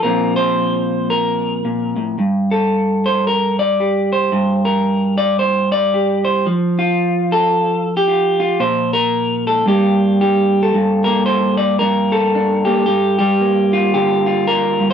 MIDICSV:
0, 0, Header, 1, 2, 480
1, 0, Start_track
1, 0, Key_signature, -2, "minor"
1, 0, Tempo, 533808
1, 36, Time_signature, 4, 2, 24, 8
1, 13429, End_track
2, 0, Start_track
2, 0, Title_t, "Clean electric guitar"
2, 0, Program_c, 0, 27
2, 27, Note_on_c, 0, 70, 89
2, 39, Note_on_c, 0, 46, 65
2, 46, Note_on_c, 0, 53, 42
2, 51, Note_on_c, 0, 60, 43
2, 59, Note_on_c, 0, 65, 38
2, 322, Note_off_c, 0, 70, 0
2, 326, Note_on_c, 0, 72, 101
2, 987, Note_off_c, 0, 72, 0
2, 991, Note_on_c, 0, 70, 80
2, 1471, Note_off_c, 0, 46, 0
2, 1482, Note_on_c, 0, 46, 56
2, 1763, Note_off_c, 0, 46, 0
2, 1767, Note_on_c, 0, 45, 57
2, 1945, Note_off_c, 0, 60, 0
2, 1947, Note_off_c, 0, 65, 0
2, 1956, Note_off_c, 0, 70, 0
2, 1958, Note_off_c, 0, 45, 0
2, 1964, Note_off_c, 0, 53, 0
2, 1967, Note_on_c, 0, 43, 59
2, 2261, Note_on_c, 0, 69, 74
2, 2749, Note_on_c, 0, 72, 80
2, 2930, Note_off_c, 0, 72, 0
2, 2942, Note_on_c, 0, 70, 91
2, 3218, Note_off_c, 0, 69, 0
2, 3224, Note_off_c, 0, 70, 0
2, 3230, Note_on_c, 0, 74, 92
2, 3418, Note_on_c, 0, 67, 43
2, 3703, Note_off_c, 0, 74, 0
2, 3710, Note_on_c, 0, 72, 79
2, 3869, Note_off_c, 0, 67, 0
2, 3876, Note_off_c, 0, 43, 0
2, 3887, Note_on_c, 0, 43, 67
2, 4179, Note_off_c, 0, 72, 0
2, 4183, Note_on_c, 0, 70, 80
2, 4650, Note_off_c, 0, 70, 0
2, 4654, Note_on_c, 0, 74, 97
2, 4844, Note_off_c, 0, 74, 0
2, 4847, Note_on_c, 0, 72, 89
2, 5139, Note_off_c, 0, 72, 0
2, 5143, Note_on_c, 0, 74, 88
2, 5341, Note_on_c, 0, 67, 44
2, 5613, Note_off_c, 0, 74, 0
2, 5617, Note_on_c, 0, 72, 73
2, 5793, Note_off_c, 0, 67, 0
2, 5807, Note_off_c, 0, 72, 0
2, 5809, Note_off_c, 0, 43, 0
2, 5813, Note_on_c, 0, 53, 66
2, 6103, Note_on_c, 0, 65, 78
2, 6585, Note_on_c, 0, 69, 82
2, 7064, Note_off_c, 0, 65, 0
2, 7158, Note_off_c, 0, 69, 0
2, 7165, Note_on_c, 0, 67, 92
2, 7265, Note_on_c, 0, 65, 45
2, 7542, Note_off_c, 0, 65, 0
2, 7553, Note_on_c, 0, 65, 80
2, 7731, Note_on_c, 0, 46, 75
2, 7732, Note_off_c, 0, 67, 0
2, 7736, Note_on_c, 0, 72, 86
2, 7737, Note_off_c, 0, 65, 0
2, 8025, Note_off_c, 0, 72, 0
2, 8032, Note_on_c, 0, 70, 100
2, 8509, Note_off_c, 0, 70, 0
2, 8517, Note_on_c, 0, 69, 83
2, 8671, Note_off_c, 0, 46, 0
2, 8685, Note_on_c, 0, 43, 65
2, 8690, Note_off_c, 0, 53, 0
2, 8694, Note_on_c, 0, 55, 43
2, 8699, Note_off_c, 0, 69, 0
2, 8700, Note_on_c, 0, 58, 39
2, 8701, Note_on_c, 0, 62, 42
2, 8707, Note_on_c, 0, 67, 70
2, 9171, Note_off_c, 0, 67, 0
2, 9182, Note_on_c, 0, 67, 82
2, 9552, Note_off_c, 0, 62, 0
2, 9556, Note_on_c, 0, 69, 81
2, 9632, Note_off_c, 0, 55, 0
2, 9650, Note_off_c, 0, 43, 0
2, 9657, Note_off_c, 0, 67, 0
2, 9661, Note_on_c, 0, 43, 69
2, 9930, Note_on_c, 0, 70, 86
2, 9934, Note_off_c, 0, 58, 0
2, 9945, Note_on_c, 0, 58, 59
2, 10119, Note_off_c, 0, 70, 0
2, 10123, Note_on_c, 0, 72, 79
2, 10405, Note_off_c, 0, 72, 0
2, 10408, Note_on_c, 0, 74, 89
2, 10422, Note_off_c, 0, 69, 0
2, 10599, Note_off_c, 0, 74, 0
2, 10602, Note_on_c, 0, 70, 92
2, 10615, Note_off_c, 0, 43, 0
2, 10618, Note_on_c, 0, 43, 59
2, 10900, Note_on_c, 0, 69, 94
2, 11107, Note_on_c, 0, 62, 47
2, 11371, Note_off_c, 0, 70, 0
2, 11375, Note_on_c, 0, 67, 80
2, 11381, Note_off_c, 0, 58, 0
2, 11393, Note_on_c, 0, 58, 60
2, 11552, Note_off_c, 0, 58, 0
2, 11553, Note_off_c, 0, 67, 0
2, 11554, Note_off_c, 0, 62, 0
2, 11564, Note_on_c, 0, 67, 84
2, 11568, Note_off_c, 0, 43, 0
2, 11578, Note_on_c, 0, 43, 67
2, 11846, Note_off_c, 0, 67, 0
2, 11857, Note_on_c, 0, 67, 92
2, 11858, Note_off_c, 0, 69, 0
2, 11870, Note_on_c, 0, 55, 65
2, 12057, Note_on_c, 0, 58, 46
2, 12346, Note_on_c, 0, 65, 88
2, 12523, Note_off_c, 0, 67, 0
2, 12536, Note_on_c, 0, 67, 93
2, 12544, Note_on_c, 0, 50, 57
2, 12815, Note_off_c, 0, 65, 0
2, 12826, Note_on_c, 0, 65, 84
2, 13006, Note_off_c, 0, 67, 0
2, 13015, Note_on_c, 0, 70, 98
2, 13295, Note_off_c, 0, 43, 0
2, 13309, Note_on_c, 0, 43, 56
2, 13391, Note_off_c, 0, 70, 0
2, 13429, Note_off_c, 0, 43, 0
2, 13429, Note_off_c, 0, 50, 0
2, 13429, Note_off_c, 0, 55, 0
2, 13429, Note_off_c, 0, 58, 0
2, 13429, Note_off_c, 0, 65, 0
2, 13429, End_track
0, 0, End_of_file